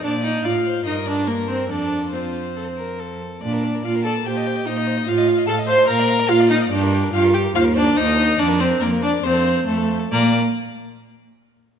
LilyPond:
<<
  \new Staff \with { instrumentName = "Violin" } { \time 4/4 \key bes \major \tempo 4 = 143 d''8 ees''8 f''4 ees''8 d''8 bes'8 c''8 | d''4 c''2~ c''8 r8 | d''4 f''8 a''8 g''4 ees''4 | f''4 a''8 c'''8 bes''4 f''8 ees''8 |
d''4 f''8 g''8 f''8 d''8 ees''4 | d''8 c''8 bes'8 d''8 c''4 a'4 | bes'8 r2. r8 | }
  \new Staff \with { instrumentName = "Violin" } { \time 4/4 \key bes \major d''4 d''8 c''8 bes'4 bes'4 | a'4 f'4 a'8 bes'8 a'4 | d''16 bes'16 d''16 bes'16 d''16 bes'16 d''16 bes'16 c''16 ees''16 c''16 ees''16 c''16 ees''16 c''16 ees''16 | f''16 ees''16 f''16 ees''16 f''16 ees''16 f''16 ees''16 f''16 d''16 f''16 d''16 f''16 d''16 f''16 d''16 |
g'16 bes'16 g'16 bes'16 g'16 bes'16 g'16 bes'16 c''16 bes'16 c''16 bes'16 c''16 bes'16 c''16 bes'16 | d''16 bes'16 d''16 bes'16 d''16 bes'16 d''16 bes'16 c''16 a'16 c''16 a'16 c''16 a'16 c''16 a'16 | d''8 r2. r8 | }
  \new Staff \with { instrumentName = "Viola" } { \time 4/4 \key bes \major d'8 ees'8 f'4 ees'8 d'8 bes8 c'8 | d'4 c'2~ c'8 r8 | d'4 f'8 a'8 g'4 ees'4 | f'4 a'8 c''8 bes'4 f'8 ees'8 |
d'4 f'8 g'8 f'8 d'8 ees'4 | d'8 c'8 bes8 d'8 c'4 a4 | bes8 r2. r8 | }
  \new Staff \with { instrumentName = "Cello" } { \clef bass \time 4/4 \key bes \major bes,4 a,4 g,2 | f,2.~ f,8 r8 | bes,4 bes,4 bes,4 bes,4 | a,4 a,4 bes,4 bes,4 |
g,4 g,4 ees,4 ees,4 | f,4 f,4 f,4 f,4 | bes,8 r2. r8 | }
>>